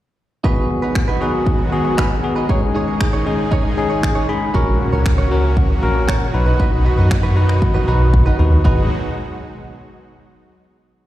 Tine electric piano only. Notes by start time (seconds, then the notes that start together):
0.44 B3 F#4 G#4
1.21 B3 F#4 G#4
1.72 B3 F#4 G#4
2.23 B3 F#4 G#4
2.49 G#3 C#4 D#4 G#4
3.26 G#3 C#4 D#4 G#4
3.77 G#3 C#4 D#4 G#4
4.03 D#5
4.29 G#3 C#4 D#4 G#4 B5
4.54 C#4 F#4 A#4
5.31 C#4 F#4 A#4
5.82 C#4 F#4 A#4
6.34 D#4 F#4 B4
7.36 D#4 F#4 B4
7.88 D#4 F#4 B4
8.39 D#4 F#4 B4
8.65 F#4 G#4 B4